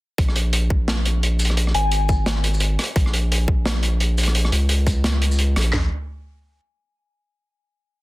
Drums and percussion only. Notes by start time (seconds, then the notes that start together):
0.18 kick, closed hi-hat
0.29 cross-stick
0.36 closed hi-hat
0.53 closed hi-hat
0.70 kick
0.88 snare, closed hi-hat
1.05 closed hi-hat
1.23 closed hi-hat
1.39 closed hi-hat, shaker
1.45 closed hi-hat
1.50 cross-stick
1.57 closed hi-hat
1.67 cross-stick
1.74 closed hi-hat
1.92 closed hi-hat
2.09 kick, shaker
2.26 snare, closed hi-hat
2.36 cross-stick
2.44 closed hi-hat
2.54 shaker
2.60 closed hi-hat
2.79 cross-stick, closed hi-hat
2.84 closed hi-hat
2.96 kick, closed hi-hat
3.06 cross-stick
3.13 closed hi-hat
3.32 closed hi-hat
3.48 kick
3.66 snare, closed hi-hat
3.83 closed hi-hat
4.00 closed hi-hat
4.18 closed hi-hat, shaker
4.23 closed hi-hat
4.28 cross-stick
4.35 closed hi-hat
4.45 cross-stick
4.52 closed hi-hat
4.69 closed hi-hat
4.87 kick, closed hi-hat, shaker
5.04 snare, closed hi-hat
5.14 cross-stick
5.22 closed hi-hat
5.31 shaker
5.39 closed hi-hat
5.56 cross-stick, closed hi-hat
5.61 closed hi-hat
5.73 snare, clap, floor tom